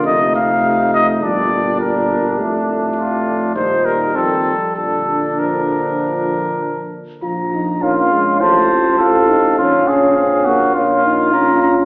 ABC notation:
X:1
M:4/4
L:1/8
Q:1/4=102
K:Bb
V:1 name="Trumpet"
e f2 e d2 B2 | z2 F2 c B A2 | A2 B4- B z | [K:Bbm] b2 f2 =a2 f2- |
f2 f4 b b |]
V:2 name="Flugelhorn"
E4 D4- | D4 E2 C z | D6- D z | [K:Bbm] z2 F2 c2 =A2 |
F A2 G F4 |]
V:3 name="French horn"
A,4 G,4 | A,4 G,4- | G, z F,4- F, z | [K:Bbm] F E D2 F2 F E |
D4 D E F2 |]
V:4 name="Trombone" clef=bass
C,4 B,,4 | A,,4 B,,2 E, z | D,6- D, z | [K:Bbm] F,2 B, A, =A, C3 |
D2 C B, B,2 D2 |]
V:5 name="Bass trombone" clef=bass
F,,,4 G,,,4 | F,,,4 E,,2 F,, z | B,,,6- B,,, z | [K:Bbm] B,,,4 =A,,,4 |
B,,,8 |]